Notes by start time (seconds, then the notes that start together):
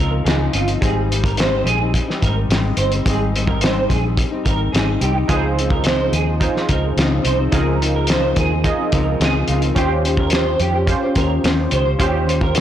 Already playing: C#3 F3 A#4
0.00 C#2 C4 D#4
0.24 C#2 C#3 F3 C4 D#4 G#4, snare, closed hi-hat
0.53 G1 C#3 F3 C4 D#4 F4, closed hi-hat
0.67 F3 C4 D#4, closed hi-hat
0.81 G#1 G#2 G3 C4 D#4 G#4, kick, closed hi-hat
1.10 G#2 G3 C4 D#4, closed hi-hat
1.24 A#4, kick, closed hi-hat
1.37 G#2 G3 C4 D#4 C5, snare, closed hi-hat
1.65 A#1 G#4, closed hi-hat
1.81 G3 C4 D#4
1.94 kick, closed hi-hat
2.08 G3 C4 D#4, snare
2.22 G#1 G#2 G3 C4 D#4 A#4, kick, closed hi-hat
2.49 G#1 G#2 G3 C4 D#4, snare, closed hi-hat
2.77 G1 G#2 G3 C4 D#4 C5, closed hi-hat
2.92 C4 D#4, closed hi-hat
2.96 G3
3.06 G#1 G#2 G3 C4 D#4 G#4, kick, closed hi-hat
3.34 G#2 G3 C4 D#4, closed hi-hat
3.47 A#4, kick
3.61 G#2 G3 C4 D#4 C5, snare, closed hi-hat
3.88 A#1 G#4, kick, closed hi-hat
4.03 G3 C4 D#4
4.17 kick, closed hi-hat
4.31 G3 C4 D#4
4.45 G#1 G#2 G3 C4 D#4 A#4, kick, closed hi-hat
4.72 G#1 G#2 G3 C4 D#4 G#4, snare, closed hi-hat
5.00 C2 G#2 G3 C4 D#4 G4, closed hi-hat
5.15 G3 C4 D#4
5.28 C#2 C#3 F3 C4 D#4 F4 G#4 B4, kick, closed hi-hat
5.37 C5
5.57 C#3 F3 C4 D#4, closed hi-hat
5.70 A#4, kick
5.84 C#3 F3 C4 D#4 C5, snare, closed hi-hat
6.13 D#2 G#4, closed hi-hat
6.27 F3 C4 D#4
6.40 D#4 F4 G#4 C5, kick, closed hi-hat
6.55 F3 C4 D#4, snare
6.69 C#2 C#3 F3 C4 D#4 A#4, kick, closed hi-hat
6.97 C#2 C#3 F3 C4 D#4, snare, closed hi-hat
7.24 C2 C#3 F3 C4 D#4 C5, closed hi-hat
7.38 F3 C4 D#4
7.52 C#2 C#3 F3 C4 D#4 F4 G#4 A#4, kick, closed hi-hat
7.80 C#3 F3 C4 D#4, closed hi-hat
7.95 A#4
8.07 C#3 F3 C4 D#4 C5, snare, closed hi-hat
8.36 D#2 G#4, kick, closed hi-hat
8.51 F3 C4 D#4
8.64 D#4 F4 G#4 D#5, kick, closed hi-hat
8.79 F3 C4 D#4
8.92 C#2 C#3 F3 C4 D#4 A#4, kick, closed hi-hat
9.19 C#2 C#3 F3 C4 D#4 G#4, snare, closed hi-hat
9.47 C#2 C#3 F3 C4 D#4 F4, closed hi-hat
9.62 F3 C4 D#4, closed hi-hat
9.75 D#2 D#3 C#4 F4 G4 C5, kick, closed hi-hat
10.04 D#3 C#4 G4 C5, closed hi-hat
10.17 A#4, kick
10.30 D#3 C#4 G4 C5, snare, closed hi-hat
10.35 C5
10.60 F2 G4, closed hi-hat
10.74 C#4 G4 C5
10.86 C#4 F4 G4 C5, kick, closed hi-hat
11.03 C#4 G4 C5
11.15 D#2 D#3 C#4 G4 A#4 C5, kick, closed hi-hat
11.44 D#2 D#3 C#4 G4 C5, snare, closed hi-hat
11.71 C#2 D#3 C#4 G4 C5, closed hi-hat
11.85 C#4 G4 C5
11.99 D#2 D#3 C#4 F4 G4 C5, kick, closed hi-hat
12.26 D#3 C#4 G4 C5, closed hi-hat
12.41 A#4, kick
12.54 D#3 C#4 G4 C5, closed hi-hat